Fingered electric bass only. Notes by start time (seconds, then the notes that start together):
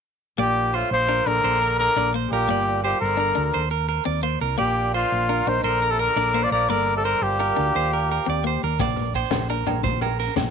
0.38 A#1
0.91 A#1
1.26 A#1
1.44 A#1
1.96 A#1
2.31 A#1
2.48 G1
3.01 G1
3.37 D2
3.55 D#2
4.07 D#2
4.41 C2
4.60 A#1
5.12 A#1
5.47 A#1
5.63 A#1
6.16 A#1
6.51 A#1
6.69 G1
7.21 G1
7.58 D2
7.75 D#2
8.28 D#2
8.63 D#2
8.80 A#1
9.34 A#1
9.69 A#1
9.84 A#1
10.37 A#1